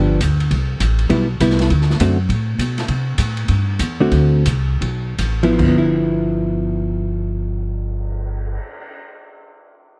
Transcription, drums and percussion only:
0.21 kick, hi-hat pedal, ride
0.40 ride
0.51 kick, ride
0.80 kick, hi-hat pedal, ride
0.99 ride
1.10 kick, ride
1.40 kick, hi-hat pedal, ride
1.50 snare
1.59 snare, ride
1.70 kick, ride
1.81 snare
1.90 snare
2.00 kick, hi-hat pedal, ride
2.29 kick, ride
2.59 kick, hi-hat pedal, ride
2.78 snare, ride
2.88 kick, ride
3.18 kick, hi-hat pedal, ride
3.37 ride
3.48 kick, ride
3.79 kick, hi-hat pedal, ride
4.12 kick, ride
4.46 kick, hi-hat pedal, ride
4.81 kick, ride
5.18 kick, hi-hat pedal, ride
5.43 ride
5.59 kick, crash
5.86 cymbal swell

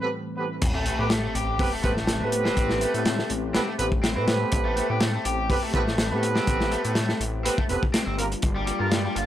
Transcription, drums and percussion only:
0.62 kick, closed hi-hat, crash
0.86 closed hi-hat
1.10 snare, closed hi-hat
1.35 closed hi-hat
1.59 kick, open hi-hat
1.83 kick, closed hi-hat
1.97 snare
2.07 snare, closed hi-hat
2.32 closed hi-hat
2.45 snare
2.57 kick, closed hi-hat
2.69 snare
2.81 closed hi-hat
2.94 closed hi-hat
3.05 snare, closed hi-hat
3.19 snare
3.30 closed hi-hat
3.55 snare, closed hi-hat
3.79 closed hi-hat
3.92 kick
4.04 snare, closed hi-hat
4.28 snare, closed hi-hat
4.52 kick, closed hi-hat
4.77 closed hi-hat
5.00 snare, closed hi-hat
5.25 closed hi-hat
5.50 kick, open hi-hat
5.74 kick, closed hi-hat
5.88 snare
5.98 snare, closed hi-hat
6.23 closed hi-hat
6.36 snare
6.47 kick, closed hi-hat
6.60 snare
6.72 closed hi-hat
6.84 closed hi-hat
6.95 snare, closed hi-hat
7.09 snare
7.21 closed hi-hat
7.46 closed hi-hat
7.58 kick
7.69 closed hi-hat
7.83 kick
7.94 snare, closed hi-hat
8.19 closed hi-hat
8.32 closed hi-hat
8.42 kick, closed hi-hat
8.67 closed hi-hat
8.92 snare, closed hi-hat
9.16 closed hi-hat

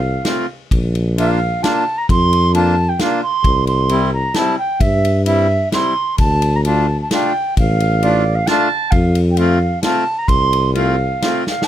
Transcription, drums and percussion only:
0.25 snare, ride
0.71 kick, ride
0.95 ride
1.18 ride
1.64 snare, ride
2.09 kick, ride
2.33 ride
2.55 ride
2.99 snare, ride
3.44 kick, ride
3.67 ride
3.89 ride
4.34 snare, ride
4.80 kick, ride
5.05 ride
5.26 ride
5.72 snare, ride
6.18 kick, ride
6.42 ride
6.65 ride
7.11 snare, ride
7.57 kick, ride
7.80 ride
8.03 ride
8.47 snare, ride
8.92 kick, ride
9.15 ride
9.37 ride
9.83 snare, ride
10.28 kick, ride
10.53 ride
10.75 ride
11.22 snare, ride
11.47 snare
11.62 snare

